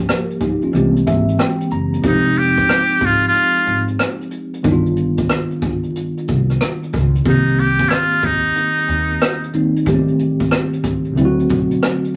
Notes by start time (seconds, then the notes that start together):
Already playing: F3 G3 A#3
0.09 G4 A#4, cross-stick, closed hi-hat
0.30 closed hi-hat
0.40 G1 D#4 G4, kick, closed hi-hat
0.62 C#4 F4, closed hi-hat
0.73 C2 E3 G#3 A#3 C4 G4, closed hi-hat
0.96 closed hi-hat
1.07 G#1 E5, kick, closed hi-hat
1.28 closed hi-hat
1.39 G5, cross-stick, closed hi-hat
1.61 closed hi-hat
1.71 F#1 A#5, closed hi-hat
1.93 closed hi-hat
2.02 F1 F3 G3 C4 D#4 G4, kick, closed hi-hat
2.07 G#3 D#4
2.25 closed hi-hat
2.36 G4, closed hi-hat
2.57 kick, closed hi-hat
2.69 cross-stick, closed hi-hat
2.90 closed hi-hat
3.01 G#1, kick, closed hi-hat
3.05 F4
3.21 closed hi-hat
3.28 F4
3.34 closed hi-hat
3.56 closed hi-hat
3.66 G#1, closed hi-hat
3.88 closed hi-hat
3.99 cross-stick, closed hi-hat
4.21 closed hi-hat
4.31 closed hi-hat
4.54 closed hi-hat
4.63 G1 D#3 G3 B3 D4 D#4, kick, closed hi-hat
4.72 F4
4.86 closed hi-hat
4.96 closed hi-hat
5.17 kick, closed hi-hat
5.29 cross-stick, closed hi-hat
5.51 closed hi-hat
5.62 G1, kick, closed hi-hat
5.83 closed hi-hat
5.95 closed hi-hat
6.17 closed hi-hat
6.28 C2, kick, closed hi-hat
6.50 cross-stick, closed hi-hat
6.61 cross-stick, closed hi-hat
6.83 closed hi-hat
6.93 C#2, kick, closed hi-hat
7.15 closed hi-hat
7.24 C2 D#3 G3 A#3 C4 G4, kick, closed hi-hat
7.29 D#4
7.47 closed hi-hat
7.58 G4, closed hi-hat
7.79 kick, closed hi-hat
7.88 E4 F4, cross-stick, closed hi-hat
8.12 closed hi-hat
8.23 D#2 D#4, kick, closed hi-hat
8.44 closed hi-hat
8.56 closed hi-hat
8.78 closed hi-hat
8.88 D#2, closed hi-hat
9.10 closed hi-hat
9.22 cross-stick, closed hi-hat
9.44 closed hi-hat
9.53 D#3 G3 A#3 C4 D#4, closed hi-hat
9.76 closed hi-hat
9.86 A1 D#3 G3 A3 B3 G4, kick, closed hi-hat
9.94 C4
10.08 closed hi-hat
10.19 closed hi-hat
10.40 kick, closed hi-hat
10.51 cross-stick, closed hi-hat
10.73 closed hi-hat
10.84 A1, kick, closed hi-hat
11.04 closed hi-hat
11.16 D2 D3 F#3 A3 C4 E4, closed hi-hat
11.25 F#4
11.39 closed hi-hat
11.49 B1, kick, closed hi-hat
11.71 closed hi-hat
11.83 cross-stick, closed hi-hat
12.04 closed hi-hat